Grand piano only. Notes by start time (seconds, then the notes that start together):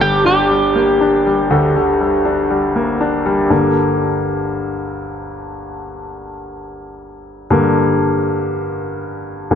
Already playing: G1 G2 D3
0.00 G3
0.25 D4
0.51 G3
0.75 A#3
1.01 D4
1.26 G3
1.50 D2 D3
1.76 D3
2.01 G3
2.25 D4
2.50 G3
2.76 A#3
3.01 D4
3.26 G3
3.50 G2 D3 A#3
7.50 G2 D3 A#3
9.51 G2 D3 A#3